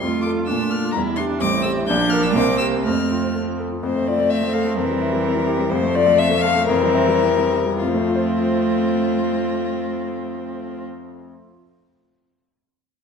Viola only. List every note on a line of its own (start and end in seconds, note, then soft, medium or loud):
0.00 0.49 F4 medium
0.47 0.96 D4 medium
0.95 1.19 E4 medium
1.18 1.43 D4 medium
1.41 1.87 C4 medium
1.88 2.38 D4 medium
2.36 2.84 C4 medium
2.85 3.62 C4 medium
3.85 5.68 C4 medium
5.71 6.66 A3 medium
6.68 7.53 C4 medium
7.80 10.84 C4 medium